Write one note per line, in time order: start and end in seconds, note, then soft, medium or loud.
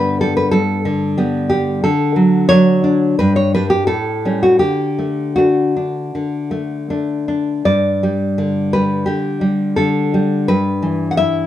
0.00 0.48 G2 medium
0.00 0.53 D3 soft
0.00 0.20 G3 soft
0.00 0.81 B3 medium
0.00 0.20 B4 medium
0.21 1.16 G3 soft
0.21 0.36 A4 medium
0.37 0.51 B4 medium
0.51 1.80 G2 medium
0.51 1.46 A4 medium
0.85 1.83 D3 soft
1.18 1.50 G3 soft
1.18 1.80 B3 medium
1.50 1.84 G3 soft
1.50 1.82 G4 medium
1.84 3.14 D3 medium
1.84 2.47 A4 medium
2.16 2.48 F#3 soft
2.49 3.14 F#3 medium
2.49 2.83 D4 medium
2.49 3.15 C#5 loud
2.84 3.18 D4 medium
3.19 3.86 G2 medium
3.19 3.35 B4 medium
3.36 3.52 C#5 medium
3.54 3.85 G3 soft
3.54 3.85 D4 medium
3.54 3.69 B4 medium
3.70 3.87 G4 medium
3.87 4.59 A2 medium
3.87 4.40 A4 medium
4.25 4.58 G3 soft
4.25 4.58 C#4 soft
4.43 4.59 F#4 medium
4.59 6.10 D3 soft
4.59 5.34 G4 medium
4.99 5.36 A3 soft
5.36 6.48 A3 soft
5.36 5.75 D4 soft
5.36 6.85 F#4 medium
5.77 6.89 D4 soft
6.15 7.61 D3 soft
6.51 6.89 A3 soft
6.90 7.61 A3 soft
6.90 7.27 D4 soft
7.28 7.65 D4 soft
7.65 9.03 G2 medium
7.65 8.69 D5 medium
8.03 8.73 G3 soft
8.38 9.06 D3 soft
8.73 9.40 G3 soft
8.73 9.06 B4 medium
9.06 9.76 D3 soft
9.06 9.74 G4 medium
9.41 10.13 G3 soft
9.76 10.47 D3 soft
9.76 10.44 A4 medium
10.14 10.48 G3 soft
10.48 11.47 G2 medium
10.48 11.06 B4 medium
10.82 11.47 E3 soft
11.11 11.17 F#5 medium
11.17 11.47 E4 medium
11.17 11.47 E5 medium